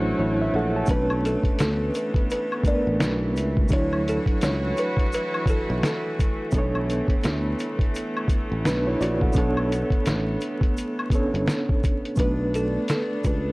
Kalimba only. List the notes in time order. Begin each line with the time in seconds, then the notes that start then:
0.91 B4
1.26 A4
1.61 A4
1.96 B4
2.32 B4
2.68 D5
3.73 C#5
4.09 A4
4.45 C#5
4.79 B4
5.14 B4
5.50 A4
5.86 A4
12.20 B4
12.55 A4
12.91 A4
13.26 B4